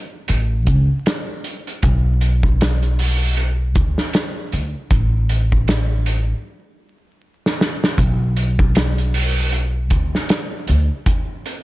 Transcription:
0.28 A1, closed hi-hat
0.67 C#2, kick, closed hi-hat
1.06 snare, closed hi-hat
1.44 closed hi-hat
1.67 closed hi-hat
1.82 B1, kick, closed hi-hat
2.21 closed hi-hat
2.43 kick
2.61 snare, closed hi-hat
2.83 closed hi-hat
2.99 open hi-hat
3.37 closed hi-hat
3.75 D2, kick, closed hi-hat
3.98 snare
4.13 snare, closed hi-hat
4.52 D2, closed hi-hat
4.90 A1, kick, closed hi-hat
5.29 closed hi-hat
5.52 kick
5.68 snare, closed hi-hat
6.06 closed hi-hat
7.46 snare
7.61 snare
7.84 snare
7.98 B1, kick, closed hi-hat
8.36 closed hi-hat
8.59 kick
8.75 snare, closed hi-hat
8.98 closed hi-hat
9.14 open hi-hat
9.52 closed hi-hat
9.90 D2, kick, closed hi-hat
10.15 snare
10.29 snare, closed hi-hat
10.67 D2, closed hi-hat
11.06 kick, closed hi-hat
11.46 closed hi-hat

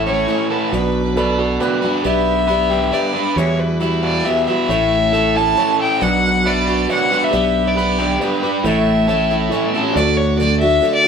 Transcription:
Already playing: A1 A2 C#4 E4 A4 C#5
0.06 A3 C#4 E4 C#5
0.28 E3 A3 C#4 E4 A4 C#5
0.50 A4 B4
0.72 B1 B2 F#3 B3 D4 F#4 B4 D5
1.13 F#3 F#4 A4 B4 C#5
1.17 B3 D4 F#4 B4 D5
1.38 F#4 A4 D5
1.60 F#3 B3 D4 F#4 B4 D5
1.81 B3 D4 F#4 B4
2.03 B1 B3 D4 G4 B4 D5 E5
2.49 B3 D4 G4 B4 D5
2.70 D4 G4 B4
2.92 B3 D4 G4 B4 D5
3.16 D4 G4 B4
3.36 E2 E3 G3 B3 E4 F#4 G4 B4 C#5 E5
3.59 B4
3.80 G3 B3 E4 F#4 G4 E5
4.03 F#4 D5
4.25 G3 B3 E4 F#4 G4 E5
4.47 G3 B3 E4 F#4 E5
4.68 A1 A2 A3 C#4 E4 A4 C#5
4.72 A4
5.11 A3 C#4 E4 A4 E5
5.16 E4 A4
5.36 C#4 E4 A4 A5
5.56 A3 C#4 E4 A4 C#5
5.80 A4 G5
5.99 B1 B2 F#3 B3 D4 F#4 B4 D5 F#5
6.03 B4
6.44 B3 D4 F#4 B4 D5 E5
6.48 F#4 B4
6.67 B3 D4 F#4 B4
6.88 B3 D4 F#4 B4 C#5
6.92 F#5
7.11 B3 D4 F#4 B4
7.24 E5
7.31 B1 B3 D4 G4 B4 D5
7.68 D5
7.75 B3 D4 G4 B4 E5
7.80 B4
7.99 D4 G4 B4
8.19 B3 D4 G4 B4 D5
8.23 B4
8.43 D4 G4 B4
8.63 A1 A2 A3 C#4 E4 A4 C#5 E5
9.07 A3 C#4 E4 A4 C#5
9.31 C#4 E4 A4
9.49 A3 C#4 E4 A4 C#5
9.54 E4 A4
9.63 G3 A3
9.68 B3 C4
9.74 C#4 D4 E4 A4
9.80 F4 G4
9.85 A4 B4
9.91 D4 F#4 A4 C5 D5
9.95 D2 D3 A3 D4 F#4 D5
10.17 C#5
10.37 D3 A3 D4 F#4 A4 D5
10.42 D4 F#4
10.60 A3 D4 F#4 E5
10.82 D3 A3 D4 F#4 A4 D5
10.94 D5
11.03 F#4

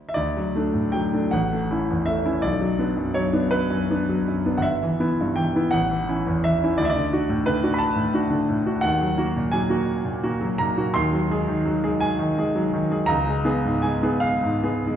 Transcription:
Already playing: D2 F#3 A3 D4
0.09 E5
0.14 D2 D5
0.37 F#3
0.55 A3 D4
0.74 A2
0.92 F#3 G5
1.13 A3 D4
1.31 A1 F#5
1.53 A3
1.71 C#4 E4
1.90 E2
2.06 A3 E5
2.25 C#4 E4
2.42 B1 D5
2.61 F#3
2.79 B3 D4
2.97 F#2
3.14 F#3 C#5
3.33 B3 D4
3.51 B4
3.70 F#2
3.91 B3 D4
4.09 F#3
4.28 F#2
4.46 B3 D4
4.57 G1 F#5
4.62 E5
4.83 E3
5.00 B3 E4
5.21 G2
5.36 E3 G5
5.56 B3 E4
5.71 A1 F#5
5.91 E3
6.08 C#4 E4
6.27 E2
6.44 E3 E5
6.63 C#4 E4
6.78 D2 D5
6.85 E5
6.90 D5
6.96 D3
7.13 D4 F#4
7.30 A2
7.46 D3 B4
7.63 D4 F#4
7.74 B5
7.78 A5
7.96 A2
8.14 D4 F#4
8.30 D3
8.49 A2
8.65 D4 F#4
8.81 D#2 F#5
9.01 F#3
9.17 A#3 F#4
9.36 A#2
9.52 F#3 G#5
9.69 A#3 F#4
10.05 A#2
10.23 A#3 F#4
10.41 F#3
10.58 A#2 A#5
10.77 A#3 F#4
10.94 D#2 C6
11.13 F#3
11.30 G#3 G#4
11.48 D#3
11.65 F#3
11.84 G#3 G#4
12.00 G#5
12.19 D#3
12.38 G#3 G#4
12.55 F#3
12.73 D#3
12.90 G#3 G#4
13.06 C#2 A#5
13.27 G#3
13.45 B3 G#4
13.65 G#2
13.82 G#3 G#5
14.03 B3 G#4
14.20 F5
14.43 G#2
14.63 B3 G#4
14.87 G#3

